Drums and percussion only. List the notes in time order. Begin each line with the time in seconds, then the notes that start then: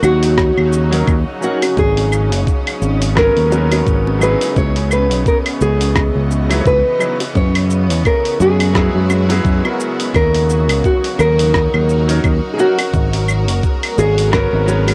0.03 claves, shaker
0.23 open hi-hat, shaker
0.38 kick, cross-stick, shaker
0.58 claves
0.73 shaker
0.93 open hi-hat, shaker
1.07 kick, claves, shaker
1.42 shaker
1.62 open hi-hat, high bongo, claves, shaker
1.77 kick, shaker
1.97 open hi-hat, high bongo
2.12 claves, shaker
2.32 open hi-hat, shaker
2.47 kick, shaker
2.67 open hi-hat, claves
2.82 shaker
3.02 open hi-hat, shaker
3.17 kick, cross-stick, claves, shaker
3.37 open hi-hat
3.52 high bongo, shaker
3.72 open hi-hat, high bongo, claves, shaker
3.87 kick, shaker
4.07 high bongo
4.21 claves, shaker
4.41 open hi-hat, shaker
4.56 kick, shaker
4.76 open hi-hat
4.91 claves, shaker
5.11 open hi-hat, shaker
5.26 kick, shaker
5.46 open hi-hat, claves
5.61 shaker
5.81 open hi-hat, shaker
5.96 kick, cross-stick, claves, shaker
6.31 shaker
6.51 open hi-hat, claves, shaker
6.66 kick, shaker
7.00 claves, shaker
7.20 open hi-hat, high bongo, shaker
7.35 kick, shaker
7.55 open hi-hat, claves
7.70 shaker
7.90 open hi-hat, shaker
8.05 kick, claves, shaker
8.25 open hi-hat
8.40 shaker
8.60 open hi-hat, claves, shaker
8.75 kick, cross-stick, shaker
9.10 high bongo, claves, shaker
9.30 open hi-hat, high bongo, shaker
9.45 kick, shaker
9.65 high bongo, claves
9.80 shaker
10.00 open hi-hat, shaker
10.15 kick, claves, shaker
10.35 open hi-hat
10.50 shaker
10.69 open hi-hat, claves, shaker
10.84 kick, shaker
11.04 open hi-hat
11.19 claves, shaker
11.39 open hi-hat, shaker
11.54 kick, cross-stick, shaker
11.74 claves
11.89 shaker
12.09 open hi-hat, shaker
12.24 kick, claves, shaker
12.59 shaker
12.78 open hi-hat, high bongo, claves, shaker
12.94 kick, shaker
13.13 open hi-hat, high bongo
13.28 claves, shaker
13.48 open hi-hat, shaker
13.63 kick, shaker
13.83 open hi-hat, claves
13.98 shaker
14.18 open hi-hat, shaker
14.33 kick, cross-stick, claves, shaker
14.68 high bongo, shaker
14.88 open hi-hat, high bongo, claves, shaker